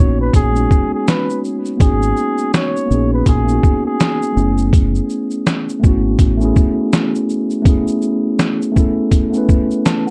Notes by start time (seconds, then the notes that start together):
Already playing: A#3 B3 C#4 C#5
0.00 A#1 D#4 F#4
0.21 B4
0.34 A#1 G#4, kick, closed hi-hat, shaker
0.52 G#3 B3 C#4, shaker
0.58 D#4 F#4
0.71 kick, shaker
0.94 G#4
1.08 B4, snare, closed hi-hat, shaker
1.30 shaker
1.44 shaker
1.65 shaker
1.77 G#1 A#3 B3 C#4, kick, closed hi-hat, shaker
1.81 D#4 F#4 G#4
2.02 shaker
2.17 shaker
2.38 shaker
2.54 C#5, snare, closed hi-hat, shaker
2.76 shaker
2.86 A#3 B3 C#4
2.91 A#1 D#4 G#4, shaker
3.13 B4
3.26 A#1 G#4, kick, closed hi-hat, shaker
3.45 A#3 B3 C#4, shaker
3.50 D#4 F#4
3.63 kick, shaker
3.86 G#4
4.00 snare, closed hi-hat, shaker
4.22 shaker
4.33 A3 B3 C#4
4.37 F#1 E4 G#4, shaker
4.58 shaker
4.73 kick, closed hi-hat, shaker
4.95 shaker
5.09 shaker
5.31 shaker
5.46 snare, closed hi-hat, shaker
5.69 shaker
5.79 A3 B3 C#4
5.84 G#1 E4 F#4, kick, shaker
6.19 A1, kick, closed hi-hat, shaker
6.37 A3 B3 C#4, shaker
6.43 E4 G#4
6.56 kick, shaker
6.93 snare, closed hi-hat, shaker
7.15 shaker
7.29 shaker
7.50 shaker
7.62 A3 B3 C#4, kick, closed hi-hat, shaker
7.68 E4 G#4
7.88 shaker
8.02 shaker
8.39 snare, closed hi-hat, shaker
8.62 shaker
8.72 A3 B3 C#4
8.76 E4 A4, kick, shaker
9.11 kick, closed hi-hat, shaker
9.30 A3 B3 C#4, shaker
9.36 E4 B4
9.49 kick, shaker
9.71 shaker
9.85 A5, snare, closed hi-hat, shaker
10.07 F#5